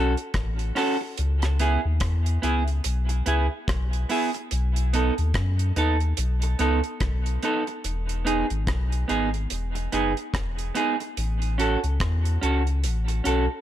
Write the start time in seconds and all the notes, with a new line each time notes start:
Already playing: B1 C#4 F#4 A4
0.17 closed hi-hat
0.34 A1, kick, cross-stick, closed hi-hat
0.59 closed hi-hat
0.75 C#4 F#4 A4, cross-stick, open hi-hat
1.01 muted clean electric guitar stroke
1.17 C#2, closed hi-hat
1.42 cross-stick, closed hi-hat
1.59 B3 E4 G#4, closed hi-hat
1.85 D#2
2.00 E2, kick, cross-stick, closed hi-hat
2.26 closed hi-hat
2.42 C#2 B3 E4 G#4, closed hi-hat
2.68 closed hi-hat
2.84 B1, closed hi-hat
3.09 muted clean electric guitar stroke, closed hi-hat
3.26 C#2 B3 E4 G#4, closed hi-hat
3.68 B1, kick, cross-stick, closed hi-hat
3.93 closed hi-hat
4.09 B3 E4 G#4, open hi-hat
4.34 muted clean electric guitar stroke, closed hi-hat
4.51 B1, closed hi-hat
4.76 closed hi-hat
4.93 B3 D#4 A4, closed hi-hat
5.18 D#2, closed hi-hat
5.34 F#2, kick, cross-stick, closed hi-hat
5.59 closed hi-hat
5.76 D#2 B3 D#4 A4, closed hi-hat
6.00 closed hi-hat
6.17 B1, closed hi-hat
6.42 muted clean electric guitar stroke, closed hi-hat
6.59 C#2 B3 D#4 A4, closed hi-hat
6.84 closed hi-hat
7.00 B1, kick, cross-stick, closed hi-hat
7.26 closed hi-hat
7.43 B3 D#4 A4, closed hi-hat
7.67 muted clean electric guitar stroke, closed hi-hat
7.84 E1, closed hi-hat
8.09 closed hi-hat
8.25 B3 D#4 G#4, closed hi-hat
8.50 G#1, closed hi-hat
8.67 B1, kick, cross-stick, closed hi-hat
8.92 closed hi-hat
9.08 G#1 B3 D#4 G#4, closed hi-hat
9.34 closed hi-hat
9.50 E1, closed hi-hat
9.75 muted clean electric guitar stroke, closed hi-hat
9.92 F#1 B3 D#4 G#4, closed hi-hat
10.17 closed hi-hat
10.34 E1, kick, cross-stick, closed hi-hat
10.59 closed hi-hat
10.75 B3 D#4 G#4, closed hi-hat
11.00 muted clean electric guitar stroke, closed hi-hat
11.17 A1, closed hi-hat
11.42 closed hi-hat
11.58 C#4 F#4 A4, closed hi-hat
11.84 C#2, closed hi-hat
12.00 E2, kick, cross-stick, closed hi-hat
12.25 closed hi-hat
12.41 C#2 C#4 F#4 A4, closed hi-hat
12.67 closed hi-hat
12.84 A1, closed hi-hat
13.08 muted clean electric guitar stroke, closed hi-hat
13.24 B1 C#4 F#4 A4, closed hi-hat